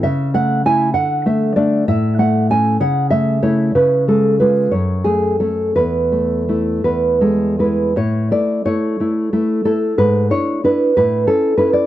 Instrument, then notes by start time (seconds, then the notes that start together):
nylon-string guitar
0.03 C#3 E5
0.34 A3 F#5
0.65 A3 E4 G#5
0.94 D3 F#5
1.26 A3 E5
1.56 A3 D4 D5
1.88 A2 E5
2.19 A3 F#5
2.50 A3 C#4 G#5
2.80 C#3 F#5
3.10 A3 E5
3.42 A3 E4 C#5
3.75 C#3 B4
4.08 G#3 A4
4.40 G#3 F4 B4
4.71 F#2 C#5
5.04 A3 G#4
5.40 A3 C#4 A4
5.76 E2 B4
6.12 A3
6.49 A3 E4
6.84 E2 B4
7.21 G#3 A4
7.59 G#3 E4 B4
7.96 A2 C#5
8.31 A3 E4 D5
8.65 A3 E4 C#5
9.00 A3 E4
9.33 A3 E4
9.65 A3 E4 A4
9.98 G#2 B4
10.30 D4 E4 C#5
10.64 D4 E4 B4
10.97 A2 B4
11.27 C#4 E4 A4
11.57 C#4 E4 B4
11.73 D5